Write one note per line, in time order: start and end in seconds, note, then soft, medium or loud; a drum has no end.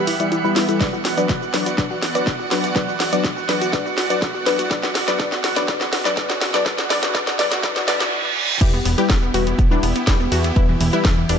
0.00 8.08 E3 medium
0.00 8.08 B3 medium
0.00 0.76 G4 medium
0.00 0.77 E5 medium
0.00 8.12 F#5 medium
0.00 0.77 B5 medium
0.07 0.16 E4 medium
0.07 open hi-hat loud
0.20 0.30 G3 medium
0.20 0.30 E4 medium
0.20 0.28 E4 medium
0.20 0.30 D5 medium
0.20 closed hi-hat medium
0.20 cabasa medium
0.32 0.41 E4 medium
0.32 closed hi-hat soft
0.32 cabasa medium
0.44 0.66 G3 medium
0.44 0.66 E4 medium
0.44 0.53 E4 medium
0.44 0.66 B4 loud
0.44 cabasa soft
0.56 0.65 E4 medium
0.56 snare medium
0.56 open hi-hat loud
0.69 0.79 G3 medium
0.69 0.79 E4 medium
0.69 0.77 E4 medium
0.69 0.79 A4 medium
0.69 closed hi-hat medium
0.69 cabasa medium
0.80 0.91 F#3 medium
0.80 0.91 D4 medium
0.80 8.08 F#4 medium
0.80 0.91 B4 medium
0.80 8.08 D5 medium
0.80 0.90 D5 medium
0.80 8.08 F#5 medium
0.80 kick loud
0.80 snare medium
0.80 closed hi-hat soft
0.80 riser medium
0.80 cabasa medium
0.93 1.02 F#4 medium
0.93 cabasa soft
1.05 1.14 F#4 medium
1.05 snare medium
1.05 open hi-hat loud
1.17 1.33 F#3 medium
1.17 1.33 D4 medium
1.17 1.33 B4 loud
1.17 1.26 D5 medium
1.17 closed hi-hat medium
1.17 cabasa medium
1.29 1.38 F#4 medium
1.29 kick loud
1.29 snare medium
1.29 closed hi-hat soft
1.29 cabasa medium
1.42 1.50 F#4 medium
1.42 cabasa soft
1.54 1.64 F#3 medium
1.54 1.64 D4 medium
1.54 1.64 B4 medium
1.54 1.63 B4 medium
1.54 snare medium
1.54 open hi-hat loud
1.66 1.75 F#4 medium
1.66 closed hi-hat medium
1.66 cabasa medium
1.78 1.88 F#3 medium
1.78 1.88 D4 medium
1.78 1.88 B4 medium
1.78 1.87 D5 medium
1.78 kick loud
1.78 snare medium
1.78 closed hi-hat medium
1.78 cabasa medium
1.91 1.99 F#4 medium
1.91 cabasa soft
2.02 2.12 F#4 medium
2.02 snare medium
2.02 open hi-hat loud
2.15 2.31 F#3 medium
2.15 2.31 D4 medium
2.15 2.31 B4 medium
2.15 2.24 D5 medium
2.15 closed hi-hat medium
2.15 cabasa medium
2.27 2.36 F#4 medium
2.27 kick loud
2.27 snare medium
2.27 closed hi-hat medium
2.27 cabasa medium
2.40 2.48 F#4 medium
2.40 cabasa soft
2.51 2.61 F#3 medium
2.51 2.61 D4 medium
2.51 2.61 B4 medium
2.51 2.60 B4 medium
2.51 snare medium
2.51 open hi-hat loud
2.64 2.72 F#4 medium
2.64 closed hi-hat medium
2.64 cabasa medium
2.75 2.86 F#3 medium
2.75 2.86 D4 medium
2.75 2.86 B4 medium
2.75 2.85 D5 medium
2.75 kick loud
2.75 snare medium
2.75 closed hi-hat medium
2.75 cabasa medium
2.88 2.97 F#4 medium
2.88 cabasa soft
3.00 3.09 F#4 medium
3.00 snare medium
3.00 open hi-hat loud
3.12 3.28 F#3 medium
3.12 3.28 D4 medium
3.12 3.28 B4 loud
3.12 3.21 D5 medium
3.12 closed hi-hat medium
3.12 cabasa medium
3.24 3.33 F#4 medium
3.24 kick loud
3.24 snare medium
3.24 closed hi-hat medium
3.24 cabasa medium
3.37 3.45 F#4 medium
3.37 cabasa soft
3.49 3.59 F#3 medium
3.49 3.59 D4 medium
3.49 3.59 B4 medium
3.49 3.58 B4 medium
3.49 snare medium
3.49 open hi-hat loud
3.61 3.70 F#4 medium
3.61 closed hi-hat medium
3.61 cabasa medium
3.73 3.83 F#3 medium
3.73 3.83 D4 medium
3.73 3.83 B4 medium
3.73 3.82 D5 medium
3.73 kick loud
3.73 snare medium
3.73 closed hi-hat medium
3.73 cabasa medium
3.86 3.94 F#4 medium
3.86 cabasa soft
3.97 4.07 F#4 medium
3.97 snare medium
3.97 open hi-hat loud
4.10 4.26 F#3 medium
4.10 4.26 D4 medium
4.10 4.26 B4 loud
4.10 4.19 D5 medium
4.10 closed hi-hat medium
4.10 cabasa medium
4.22 4.31 F#4 medium
4.22 kick loud
4.22 snare medium
4.22 closed hi-hat medium
4.22 cabasa medium
4.34 4.43 F#4 medium
4.34 cabasa soft
4.46 4.57 F#3 medium
4.46 4.57 D4 medium
4.46 4.55 B4 medium
4.46 4.57 B4 medium
4.46 snare medium
4.46 open hi-hat loud
4.59 4.67 F#4 medium
4.59 closed hi-hat medium
4.59 cabasa medium
4.71 4.81 F#3 medium
4.71 4.81 D4 medium
4.71 4.81 B4 medium
4.71 4.80 D5 loud
4.71 kick loud
4.71 snare medium
4.71 closed hi-hat medium
4.71 cabasa medium
4.83 4.92 F#4 medium
4.83 snare medium
4.83 cabasa soft
4.95 5.04 F#4 medium
4.95 snare loud
4.95 open hi-hat loud
5.08 5.18 F#3 medium
5.08 5.18 D4 medium
5.08 5.18 B4 loud
5.08 5.16 D5 loud
5.08 snare medium
5.08 closed hi-hat medium
5.08 cabasa medium
5.19 5.30 F#3 medium
5.19 5.30 D4 medium
5.19 5.30 B4 medium
5.19 5.29 D5 loud
5.19 kick loud
5.19 snare medium
5.19 closed hi-hat medium
5.19 cabasa medium
5.32 5.41 F#4 medium
5.32 snare medium
5.32 cabasa soft
5.44 5.53 F#4 medium
5.44 snare medium
5.44 open hi-hat loud
5.56 5.67 F#3 medium
5.56 5.67 D4 medium
5.56 5.67 B4 loud
5.56 5.65 D5 loud
5.56 snare medium
5.56 closed hi-hat medium
5.56 cabasa medium
5.68 5.79 F#3 medium
5.68 5.79 D4 medium
5.68 5.79 B4 medium
5.68 5.77 D5 loud
5.68 kick loud
5.68 snare loud
5.68 closed hi-hat medium
5.68 cabasa medium
5.81 5.89 F#4 medium
5.81 snare medium
5.81 cabasa soft
5.93 6.02 F#4 medium
5.93 snare medium
5.93 open hi-hat loud
6.05 6.15 F#3 medium
6.05 6.15 D4 medium
6.05 6.15 B4 loud
6.05 6.14 D5 medium
6.05 snare medium
6.05 closed hi-hat medium
6.05 cabasa medium
6.17 6.27 F#3 medium
6.17 6.27 D4 medium
6.17 6.27 B4 loud
6.17 6.26 D5 loud
6.17 kick loud
6.17 snare medium
6.17 closed hi-hat medium
6.17 cabasa medium
6.30 6.38 F#4 medium
6.30 snare medium
6.30 cabasa soft
6.41 6.50 F#4 medium
6.41 snare loud
6.41 open hi-hat loud
6.54 6.64 F#3 medium
6.54 6.64 D4 medium
6.54 6.64 B4 loud
6.54 6.63 D5 medium
6.54 snare medium
6.54 closed hi-hat medium
6.54 cabasa medium
6.66 6.76 F#3 medium
6.66 6.76 D4 medium
6.66 6.76 B4 medium
6.66 6.75 D5 loud
6.66 kick loud
6.66 snare loud
6.66 closed hi-hat medium
6.66 cabasa medium
6.78 6.87 F#4 medium
6.78 snare medium
6.78 cabasa soft
6.90 7.01 F#3 medium
6.90 7.01 D4 medium
6.90 7.01 B4 loud
6.90 6.99 D5 loud
6.90 snare loud
6.90 open hi-hat loud
7.03 7.11 F#4 medium
7.03 snare medium
7.03 closed hi-hat medium
7.03 cabasa medium
7.15 7.25 F#3 medium
7.15 7.25 D4 medium
7.15 7.25 B4 medium
7.15 7.24 D5 loud
7.15 kick loud
7.15 snare loud
7.15 closed hi-hat medium
7.15 cabasa medium
7.27 7.36 F#4 medium
7.27 snare medium
7.27 cabasa soft
7.39 7.49 F#3 medium
7.39 7.49 D4 medium
7.39 7.49 B4 medium
7.39 7.48 D5 loud
7.39 snare loud
7.39 open hi-hat loud
7.51 7.60 F#4 medium
7.51 snare loud
7.51 closed hi-hat medium
7.51 cabasa medium
7.63 7.74 F#3 medium
7.63 7.74 D4 medium
7.63 7.74 B4 medium
7.63 7.72 D5 loud
7.63 kick loud
7.63 snare loud
7.63 closed hi-hat medium
7.63 reverse cymbal medium
7.63 cabasa medium
7.76 7.84 F#4 medium
7.76 snare medium
7.76 cabasa soft
7.88 7.98 F#3 medium
7.88 7.98 D4 medium
7.88 7.98 B4 loud
7.88 7.97 D5 loud
7.88 snare loud
7.88 open hi-hat loud
8.00 8.09 F#4 medium
8.00 snare loud
8.00 closed hi-hat medium
8.00 cabasa medium
8.61 8.81 E1 loud
8.61 8.71 G3 medium
8.61 11.39 B3 medium
8.61 8.71 E4 medium
8.61 11.39 E4 medium
8.61 8.70 G4 loud
8.61 11.39 G4 medium
8.61 8.71 B4 medium
8.61 kick loud
8.61 closed hi-hat medium
8.61 crash loud
8.61 cabasa soft
8.73 8.82 B3 medium
8.85 8.96 E1 medium
8.85 8.94 B3 medium
8.85 open hi-hat loud
8.85 cabasa medium
8.98 9.14 G3 loud
8.98 9.14 E4 medium
8.98 9.06 G4 loud
8.98 9.14 B4 loud
8.98 closed hi-hat medium
8.98 cabasa soft
9.10 9.30 E1 medium
9.10 9.19 B3 medium
9.10 kick loud
9.10 snare loud
9.10 closed hi-hat medium
9.10 cabasa soft
9.22 9.31 B3 medium
9.22 cabasa soft
9.34 9.54 E1 medium
9.34 9.45 G3 medium
9.34 9.44 E4 medium
9.34 9.43 F#4 loud
9.34 9.45 B4 medium
9.34 open hi-hat loud
9.34 cabasa medium
9.47 9.55 B3 medium
9.47 closed hi-hat medium
9.47 cabasa soft
9.59 9.79 E1 medium
9.59 9.68 B3 medium
9.59 kick loud
9.59 closed hi-hat medium
9.59 cabasa soft
9.71 9.81 G3 loud
9.71 9.80 D4 loud
9.71 9.81 E4 medium
9.71 9.81 B4 loud
9.71 cabasa soft
9.83 9.93 E1 loud
9.83 9.92 B3 medium
9.83 open hi-hat loud
9.83 cabasa medium
9.96 10.04 B3 medium
9.96 closed hi-hat medium
9.96 cabasa soft
10.07 10.28 E1 loud
10.07 10.23 G3 loud
10.07 10.23 E4 medium
10.07 10.16 G4 medium
10.07 10.23 B4 loud
10.07 kick loud
10.07 snare loud
10.07 closed hi-hat medium
10.07 cabasa soft
10.20 10.28 B3 medium
10.20 cabasa soft
10.32 10.52 E2 medium
10.32 10.41 F#4 medium
10.32 open hi-hat loud
10.32 cabasa medium
10.44 10.53 B3 medium
10.44 closed hi-hat medium
10.44 cabasa soft
10.56 10.76 E1 loud
10.56 10.66 G3 medium
10.56 10.66 E4 medium
10.56 10.65 E4 loud
10.56 10.66 B4 loud
10.56 kick loud
10.56 closed hi-hat medium
10.56 cabasa soft
10.69 10.77 E3 medium
10.81 10.91 E1 loud
10.81 10.90 E3 medium
10.81 open hi-hat loud
10.81 cabasa medium
10.93 11.09 G3 medium
10.93 11.02 E4 loud
10.93 11.09 E4 medium
10.93 11.09 B4 loud
10.93 closed hi-hat medium
10.93 cabasa soft
11.05 11.25 E1 medium
11.05 11.14 E3 medium
11.05 kick loud
11.05 snare loud
11.05 closed hi-hat medium
11.05 cabasa soft
11.18 11.26 E3 medium
11.18 cabasa soft
11.29 11.39 E1 medium
11.29 11.39 G3 medium
11.29 11.38 D4 loud
11.29 11.39 E4 medium
11.29 11.39 B4 loud
11.29 open hi-hat loud
11.29 cabasa medium